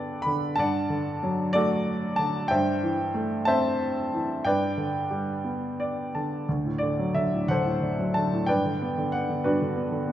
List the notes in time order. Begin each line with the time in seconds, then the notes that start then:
Already playing: G2 D3 B3 D4 A4 B4 D5 G5
0.22 B5
0.26 D3
0.56 G2 D5 F#5 A5
0.90 D3
1.23 F#3
1.53 A3 F#4 A4 D5
2.16 D3 A5
2.48 G2 C5 E5 G5
2.83 E3
3.14 A3
3.45 C4 C5 E5 A5
4.14 E3
4.45 G2 B4 D5 G5
4.77 D3
5.11 G3
5.44 B3
5.80 D5
6.15 D3 A5
6.49 D2
6.65 A2
6.78 D5
6.83 D3
6.99 F#3
7.14 D3 E5
7.33 A2
7.48 D2 A4 C5 F#5
7.64 A2
7.82 D3
7.99 F#3
8.14 D3 A5
8.33 A2
8.46 G2 B4 D5 G5
8.65 D3
8.82 B3
8.98 D3
9.12 B3 F#5
9.29 D3
9.44 G2 D4 F#4 B4
9.62 D3
9.76 B3
9.92 D3
10.08 B3